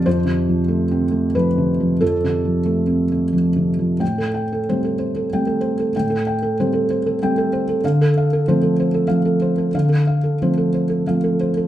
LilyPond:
<<
  \new Staff \with { instrumentName = "Felt piano" } { \time 3/4 \key a \minor \tempo 4 = 93 c''2 b'4 | a'2 r4 | g''16 a'16 g''16 a'16 c''16 a'16 c''16 a'16 g''16 a'16 c''16 a'16 | g''16 a'16 g''16 a'16 c''16 a'16 c''16 a'16 g''16 a'16 c''16 a'16 |
f''16 a'16 f''16 a'16 c''16 a'16 c''16 a'16 f''16 a'16 c''16 a'16 | f''16 a'16 f''16 a'16 c''16 a'16 c''16 a'16 f''16 a'16 c''16 a'16 | }
  \new Staff \with { instrumentName = "Felt piano" } { \clef bass \time 3/4 \key a \minor \tuplet 3/2 { <f, f>8 c8 f8 a8 c'8 a8 f8 c8 f8 } | \tuplet 3/2 { f,8 c8 f8 a8 c'8 a8 f8 c8 f8 } | a,4 <g a c'>4 <g a c'>4 | a,4 <g a c'>4 <g a c'>4 |
d4 <f a c'>4 <f a c'>4 | d4 <f a c'>4 <f a c'>4 | }
>>